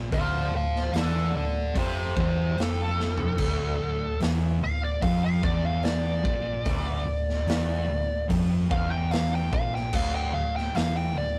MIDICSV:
0, 0, Header, 1, 5, 480
1, 0, Start_track
1, 0, Key_signature, -1, "minor"
1, 0, Tempo, 817439
1, 69, Time_signature, 4, 2, 24, 8
1, 6688, End_track
2, 0, Start_track
2, 0, Title_t, "Lead electric guitar"
2, 0, Program_c, 0, 29
2, 77, Note_on_c, 0, 72, 76
2, 82, Note_on_c, 0, 77, 96
2, 309, Note_off_c, 0, 77, 0
2, 314, Note_off_c, 0, 72, 0
2, 329, Note_on_c, 0, 72, 82
2, 332, Note_on_c, 0, 77, 91
2, 544, Note_off_c, 0, 72, 0
2, 554, Note_off_c, 0, 77, 0
2, 569, Note_on_c, 0, 69, 75
2, 573, Note_on_c, 0, 74, 82
2, 784, Note_off_c, 0, 69, 0
2, 795, Note_off_c, 0, 74, 0
2, 803, Note_on_c, 0, 69, 81
2, 805, Note_on_c, 0, 74, 87
2, 1021, Note_off_c, 0, 69, 0
2, 1030, Note_off_c, 0, 74, 0
2, 1043, Note_on_c, 0, 67, 84
2, 1051, Note_on_c, 0, 72, 84
2, 1261, Note_off_c, 0, 67, 0
2, 1275, Note_off_c, 0, 72, 0
2, 1289, Note_on_c, 0, 67, 92
2, 1292, Note_on_c, 0, 72, 109
2, 1504, Note_off_c, 0, 67, 0
2, 1515, Note_off_c, 0, 72, 0
2, 1536, Note_on_c, 0, 69, 113
2, 2462, Note_off_c, 0, 69, 0
2, 2723, Note_on_c, 0, 77, 100
2, 2835, Note_off_c, 0, 77, 0
2, 2844, Note_on_c, 0, 74, 81
2, 2951, Note_off_c, 0, 74, 0
2, 2953, Note_on_c, 0, 77, 94
2, 3070, Note_off_c, 0, 77, 0
2, 3084, Note_on_c, 0, 77, 95
2, 3195, Note_off_c, 0, 77, 0
2, 3198, Note_on_c, 0, 74, 108
2, 3312, Note_off_c, 0, 74, 0
2, 3324, Note_on_c, 0, 77, 82
2, 3431, Note_off_c, 0, 77, 0
2, 3433, Note_on_c, 0, 74, 99
2, 4850, Note_off_c, 0, 74, 0
2, 5116, Note_on_c, 0, 77, 105
2, 5230, Note_off_c, 0, 77, 0
2, 5232, Note_on_c, 0, 79, 101
2, 5349, Note_off_c, 0, 79, 0
2, 5354, Note_on_c, 0, 77, 105
2, 5470, Note_off_c, 0, 77, 0
2, 5491, Note_on_c, 0, 79, 94
2, 5599, Note_off_c, 0, 79, 0
2, 5601, Note_on_c, 0, 77, 112
2, 5714, Note_off_c, 0, 77, 0
2, 5725, Note_on_c, 0, 79, 88
2, 5836, Note_off_c, 0, 79, 0
2, 5845, Note_on_c, 0, 77, 86
2, 5956, Note_off_c, 0, 77, 0
2, 5962, Note_on_c, 0, 79, 82
2, 6071, Note_off_c, 0, 79, 0
2, 6074, Note_on_c, 0, 77, 92
2, 6190, Note_off_c, 0, 77, 0
2, 6201, Note_on_c, 0, 79, 99
2, 6314, Note_off_c, 0, 79, 0
2, 6319, Note_on_c, 0, 77, 90
2, 6433, Note_off_c, 0, 77, 0
2, 6439, Note_on_c, 0, 79, 92
2, 6553, Note_off_c, 0, 79, 0
2, 6564, Note_on_c, 0, 74, 99
2, 6688, Note_off_c, 0, 74, 0
2, 6688, End_track
3, 0, Start_track
3, 0, Title_t, "Distorted electric guitar"
3, 0, Program_c, 1, 30
3, 0, Note_on_c, 1, 46, 96
3, 61, Note_off_c, 1, 46, 0
3, 68, Note_on_c, 1, 38, 116
3, 300, Note_off_c, 1, 38, 0
3, 307, Note_on_c, 1, 38, 71
3, 501, Note_off_c, 1, 38, 0
3, 539, Note_on_c, 1, 40, 107
3, 778, Note_off_c, 1, 40, 0
3, 786, Note_on_c, 1, 38, 71
3, 980, Note_off_c, 1, 38, 0
3, 1022, Note_on_c, 1, 41, 100
3, 1260, Note_off_c, 1, 41, 0
3, 1270, Note_on_c, 1, 40, 119
3, 1504, Note_off_c, 1, 40, 0
3, 1506, Note_on_c, 1, 41, 100
3, 1982, Note_off_c, 1, 41, 0
3, 1985, Note_on_c, 1, 38, 123
3, 2222, Note_off_c, 1, 38, 0
3, 2229, Note_on_c, 1, 38, 70
3, 2423, Note_off_c, 1, 38, 0
3, 2468, Note_on_c, 1, 40, 114
3, 2703, Note_off_c, 1, 40, 0
3, 2708, Note_on_c, 1, 38, 65
3, 2903, Note_off_c, 1, 38, 0
3, 2942, Note_on_c, 1, 41, 118
3, 3181, Note_off_c, 1, 41, 0
3, 3186, Note_on_c, 1, 40, 105
3, 3663, Note_off_c, 1, 40, 0
3, 3665, Note_on_c, 1, 46, 101
3, 3899, Note_off_c, 1, 46, 0
3, 3902, Note_on_c, 1, 38, 109
3, 4134, Note_off_c, 1, 38, 0
3, 4141, Note_on_c, 1, 38, 68
3, 4339, Note_off_c, 1, 38, 0
3, 4385, Note_on_c, 1, 40, 101
3, 4623, Note_off_c, 1, 40, 0
3, 4625, Note_on_c, 1, 38, 65
3, 4822, Note_off_c, 1, 38, 0
3, 4862, Note_on_c, 1, 41, 114
3, 5101, Note_off_c, 1, 41, 0
3, 5104, Note_on_c, 1, 40, 104
3, 5582, Note_off_c, 1, 40, 0
3, 5592, Note_on_c, 1, 46, 90
3, 5823, Note_off_c, 1, 46, 0
3, 5826, Note_on_c, 1, 38, 113
3, 6062, Note_off_c, 1, 38, 0
3, 6068, Note_on_c, 1, 38, 76
3, 6263, Note_off_c, 1, 38, 0
3, 6314, Note_on_c, 1, 40, 119
3, 6542, Note_off_c, 1, 40, 0
3, 6545, Note_on_c, 1, 38, 74
3, 6688, Note_off_c, 1, 38, 0
3, 6688, End_track
4, 0, Start_track
4, 0, Title_t, "Picked electric bass"
4, 0, Program_c, 2, 34
4, 70, Note_on_c, 2, 26, 96
4, 294, Note_off_c, 2, 26, 0
4, 307, Note_on_c, 2, 26, 83
4, 532, Note_off_c, 2, 26, 0
4, 543, Note_on_c, 2, 28, 101
4, 770, Note_off_c, 2, 28, 0
4, 784, Note_on_c, 2, 26, 81
4, 1011, Note_off_c, 2, 26, 0
4, 1032, Note_on_c, 2, 29, 106
4, 1255, Note_off_c, 2, 29, 0
4, 1272, Note_on_c, 2, 28, 102
4, 1495, Note_off_c, 2, 28, 0
4, 1511, Note_on_c, 2, 29, 104
4, 1969, Note_off_c, 2, 29, 0
4, 1986, Note_on_c, 2, 26, 96
4, 2213, Note_off_c, 2, 26, 0
4, 2235, Note_on_c, 2, 26, 92
4, 2458, Note_off_c, 2, 26, 0
4, 2477, Note_on_c, 2, 28, 109
4, 2699, Note_off_c, 2, 28, 0
4, 2715, Note_on_c, 2, 26, 78
4, 2938, Note_off_c, 2, 26, 0
4, 2946, Note_on_c, 2, 29, 102
4, 3173, Note_off_c, 2, 29, 0
4, 3190, Note_on_c, 2, 28, 91
4, 3649, Note_off_c, 2, 28, 0
4, 3668, Note_on_c, 2, 34, 93
4, 3894, Note_off_c, 2, 34, 0
4, 3909, Note_on_c, 2, 26, 99
4, 4135, Note_off_c, 2, 26, 0
4, 4147, Note_on_c, 2, 26, 94
4, 4374, Note_off_c, 2, 26, 0
4, 4383, Note_on_c, 2, 28, 97
4, 4611, Note_off_c, 2, 28, 0
4, 4632, Note_on_c, 2, 26, 80
4, 4856, Note_off_c, 2, 26, 0
4, 4871, Note_on_c, 2, 29, 111
4, 5095, Note_off_c, 2, 29, 0
4, 5112, Note_on_c, 2, 28, 101
4, 5570, Note_off_c, 2, 28, 0
4, 5593, Note_on_c, 2, 34, 91
4, 5817, Note_off_c, 2, 34, 0
4, 5834, Note_on_c, 2, 26, 111
4, 6057, Note_off_c, 2, 26, 0
4, 6070, Note_on_c, 2, 26, 82
4, 6295, Note_off_c, 2, 26, 0
4, 6311, Note_on_c, 2, 28, 102
4, 6535, Note_off_c, 2, 28, 0
4, 6552, Note_on_c, 2, 26, 91
4, 6688, Note_off_c, 2, 26, 0
4, 6688, End_track
5, 0, Start_track
5, 0, Title_t, "Drums"
5, 73, Note_on_c, 9, 36, 102
5, 76, Note_on_c, 9, 46, 58
5, 131, Note_off_c, 9, 36, 0
5, 134, Note_off_c, 9, 46, 0
5, 444, Note_on_c, 9, 38, 30
5, 502, Note_off_c, 9, 38, 0
5, 549, Note_on_c, 9, 46, 66
5, 563, Note_on_c, 9, 38, 113
5, 608, Note_off_c, 9, 46, 0
5, 622, Note_off_c, 9, 38, 0
5, 1030, Note_on_c, 9, 46, 69
5, 1031, Note_on_c, 9, 36, 110
5, 1089, Note_off_c, 9, 36, 0
5, 1089, Note_off_c, 9, 46, 0
5, 1272, Note_on_c, 9, 36, 119
5, 1331, Note_off_c, 9, 36, 0
5, 1514, Note_on_c, 9, 46, 56
5, 1528, Note_on_c, 9, 38, 106
5, 1572, Note_off_c, 9, 46, 0
5, 1586, Note_off_c, 9, 38, 0
5, 1762, Note_on_c, 9, 38, 65
5, 1821, Note_off_c, 9, 38, 0
5, 1865, Note_on_c, 9, 43, 93
5, 1923, Note_off_c, 9, 43, 0
5, 1985, Note_on_c, 9, 49, 96
5, 1990, Note_on_c, 9, 36, 94
5, 2044, Note_off_c, 9, 49, 0
5, 2049, Note_off_c, 9, 36, 0
5, 2467, Note_on_c, 9, 46, 63
5, 2481, Note_on_c, 9, 38, 120
5, 2526, Note_off_c, 9, 46, 0
5, 2540, Note_off_c, 9, 38, 0
5, 2949, Note_on_c, 9, 46, 66
5, 2950, Note_on_c, 9, 36, 124
5, 3007, Note_off_c, 9, 46, 0
5, 3009, Note_off_c, 9, 36, 0
5, 3190, Note_on_c, 9, 36, 116
5, 3249, Note_off_c, 9, 36, 0
5, 3422, Note_on_c, 9, 46, 50
5, 3436, Note_on_c, 9, 38, 107
5, 3481, Note_off_c, 9, 46, 0
5, 3495, Note_off_c, 9, 38, 0
5, 3670, Note_on_c, 9, 36, 109
5, 3729, Note_off_c, 9, 36, 0
5, 3906, Note_on_c, 9, 46, 54
5, 3910, Note_on_c, 9, 36, 108
5, 3964, Note_off_c, 9, 46, 0
5, 3969, Note_off_c, 9, 36, 0
5, 4282, Note_on_c, 9, 38, 34
5, 4341, Note_off_c, 9, 38, 0
5, 4389, Note_on_c, 9, 46, 57
5, 4403, Note_on_c, 9, 38, 118
5, 4447, Note_off_c, 9, 46, 0
5, 4462, Note_off_c, 9, 38, 0
5, 4873, Note_on_c, 9, 46, 69
5, 4874, Note_on_c, 9, 36, 107
5, 4932, Note_off_c, 9, 46, 0
5, 4933, Note_off_c, 9, 36, 0
5, 5115, Note_on_c, 9, 36, 125
5, 5173, Note_off_c, 9, 36, 0
5, 5351, Note_on_c, 9, 46, 56
5, 5365, Note_on_c, 9, 38, 109
5, 5409, Note_off_c, 9, 46, 0
5, 5423, Note_off_c, 9, 38, 0
5, 5595, Note_on_c, 9, 36, 115
5, 5653, Note_off_c, 9, 36, 0
5, 5729, Note_on_c, 9, 38, 35
5, 5787, Note_off_c, 9, 38, 0
5, 5829, Note_on_c, 9, 49, 102
5, 5834, Note_on_c, 9, 36, 102
5, 5888, Note_off_c, 9, 49, 0
5, 5893, Note_off_c, 9, 36, 0
5, 6209, Note_on_c, 9, 38, 32
5, 6267, Note_off_c, 9, 38, 0
5, 6311, Note_on_c, 9, 46, 70
5, 6326, Note_on_c, 9, 38, 108
5, 6370, Note_off_c, 9, 46, 0
5, 6384, Note_off_c, 9, 38, 0
5, 6688, End_track
0, 0, End_of_file